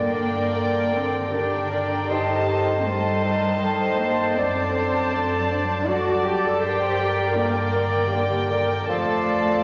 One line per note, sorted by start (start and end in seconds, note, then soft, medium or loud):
0.00 0.90 G2 soft
0.00 2.07 G2 soft
0.00 2.09 G2 soft
0.00 0.14 D3 soft
0.00 0.54 A#3 soft
0.00 0.94 A#3 medium
0.00 0.27 D4 soft
0.00 0.51 D4 soft
0.00 3.10 G4 soft
0.00 0.14 A#4 soft
0.00 1.30 A#4 soft
0.00 2.08 A#4 soft
0.00 1.58 A#4 soft
0.00 0.13 D5 soft
0.00 1.30 D5 soft
0.00 2.07 D5 soft
0.00 0.14 G5 soft
0.00 1.29 G5 soft
0.14 0.54 D3 soft
0.14 0.53 A#4 soft
0.14 0.53 D5 soft
0.14 0.55 G5 soft
0.28 1.84 D4 soft
0.54 0.93 D3 soft
0.54 2.14 A#3 soft
0.54 0.93 A#4 soft
0.54 0.94 A#4 soft
0.54 0.93 D5 soft
0.54 0.94 G5 soft
0.82 1.32 D3 soft
0.93 1.33 D3 soft
0.93 1.33 C4 medium
0.93 1.33 A4 soft
0.93 1.32 A#4 soft
0.93 1.32 D5 soft
0.93 1.33 G5 soft
1.07 1.51 D#3 soft
1.33 2.14 D3 soft
1.33 1.72 D3 soft
1.33 2.11 D4 medium
1.33 1.71 G4 soft
1.33 1.72 A#4 soft
1.33 2.10 A#4 soft
1.33 1.71 D5 soft
1.33 2.10 D5 soft
1.33 2.09 G5 soft
1.33 1.72 G5 soft
1.59 2.14 A#4 soft
1.71 2.10 D3 soft
1.71 2.10 A#4 soft
1.71 2.11 A#4 soft
1.71 2.09 D5 soft
1.71 2.10 G5 soft
1.85 2.14 D4 soft
2.10 4.41 G2 soft
2.10 4.34 G2 soft
2.10 2.48 D#3 soft
2.10 2.86 D#4 medium
2.10 2.86 G4 soft
2.10 6.59 A4 soft
2.10 2.49 A4 soft
2.10 2.47 C5 soft
2.10 2.85 C5 soft
2.10 4.34 D#5 soft
2.10 2.85 D#5 soft
2.10 2.48 A5 soft
2.10 2.86 A5 soft
2.36 3.86 C5 soft
2.48 2.85 D#3 soft
2.48 2.86 A4 soft
2.48 2.86 C5 soft
2.48 2.86 A5 soft
2.61 4.11 D#4 soft
2.85 3.24 D#3 soft
2.85 4.00 G3 medium
2.85 3.36 A3 soft
2.85 3.24 A4 soft
2.85 4.35 C5 soft
2.85 3.24 C5 soft
2.85 4.35 D#5 soft
2.85 4.35 A5 soft
2.85 3.25 A5 soft
3.12 3.62 G3 soft
3.24 3.62 D#3 soft
3.24 3.62 A4 soft
3.24 3.63 A#4 soft
3.24 3.62 C5 soft
3.24 3.62 A5 soft
3.37 3.80 A3 soft
3.63 4.00 D#3 soft
3.63 4.41 G3 soft
3.63 4.00 A4 soft
3.63 5.89 C5 medium
3.63 4.00 C5 soft
3.63 3.99 A5 soft
3.87 6.66 C5 soft
4.00 4.37 D#3 soft
4.00 4.37 A#3 medium
4.00 4.37 A4 soft
4.00 4.37 C5 soft
4.00 4.37 A5 soft
4.12 4.41 D#4 soft
4.37 6.66 F#2 soft
4.37 6.59 F#2 soft
4.37 4.75 D3 soft
4.37 5.52 C4 medium
4.37 4.75 A4 soft
4.37 5.86 D5 medium
4.37 4.75 D5 soft
4.37 8.71 D5 medium
4.37 5.86 A5 medium
4.37 4.75 A5 soft
4.63 6.12 D5 soft
4.76 5.12 D3 soft
4.76 5.13 A4 soft
4.76 5.13 D5 soft
4.76 5.13 A5 soft
4.88 6.36 D4 soft
5.13 5.50 D3 soft
5.13 6.66 A3 soft
5.13 5.52 A4 soft
5.13 5.51 D5 soft
5.13 5.51 A5 soft
5.39 5.88 F#3 soft
5.51 5.89 D3 soft
5.51 5.88 D4 medium
5.51 5.89 A4 soft
5.51 5.88 D5 soft
5.51 5.88 A5 soft
5.64 6.07 G3 soft
5.88 6.25 D3 soft
5.88 6.66 F#3 soft
5.88 6.26 F#4 medium
5.88 6.26 A4 soft
5.88 6.25 D5 soft
5.88 6.61 D5 medium
5.88 6.62 D5 medium
5.88 6.25 A5 soft
5.88 6.62 A5 soft
6.13 6.86 D5 soft
6.25 6.62 D3 soft
6.25 6.44 G4 medium
6.25 6.62 A4 soft
6.25 6.61 D5 soft
6.25 6.61 A5 soft
6.37 7.10 D4 soft
6.44 6.63 A4 medium
6.61 8.91 G2 medium
6.61 8.89 G2 medium
6.61 6.99 D3 soft
6.61 7.37 G4 medium
6.61 6.98 A#4 soft
6.61 8.71 A#4 soft
6.61 6.99 C5 medium
6.61 6.97 D5 soft
6.61 7.37 D5 soft
6.61 6.98 G5 soft
6.61 7.36 G5 medium
6.97 7.37 D3 soft
6.97 7.36 A#4 soft
6.97 8.14 A#4 medium
6.97 7.36 D5 soft
6.97 7.36 G5 soft
7.12 8.62 D4 soft
7.36 7.74 D3 soft
7.36 8.91 G3 soft
7.36 8.51 A#3 medium
7.36 7.74 A#4 medium
7.36 7.72 D5 medium
7.36 8.87 D5 medium
7.36 8.86 G5 medium
7.36 7.75 G5 soft
7.62 8.13 D3 soft
7.73 8.13 D3 soft
7.73 8.13 A#4 medium
7.73 8.12 D5 soft
7.73 8.13 G5 soft
7.88 8.31 D#3 soft
8.12 8.51 D3 soft
8.12 8.92 D3 soft
8.12 8.51 G4 medium
8.12 8.50 A#4 soft
8.12 8.50 D5 soft
8.12 8.51 G5 soft
8.38 9.11 D5 soft
8.51 8.88 D3 soft
8.51 8.87 A#4 soft
8.51 8.89 A#4 medium
8.51 8.87 D5 soft
8.51 8.89 G5 medium
8.63 9.36 D4 soft
8.87 9.63 F2 medium
8.87 9.63 F3 medium
8.87 9.63 A3 medium
8.87 9.61 A4 medium
8.87 9.63 A4 medium
8.87 9.63 D5 soft
8.87 9.63 D5 medium
8.87 9.63 F5 medium
8.87 9.63 F5 soft
8.87 9.63 A5 medium
9.13 9.63 D5 soft
9.37 9.63 D4 soft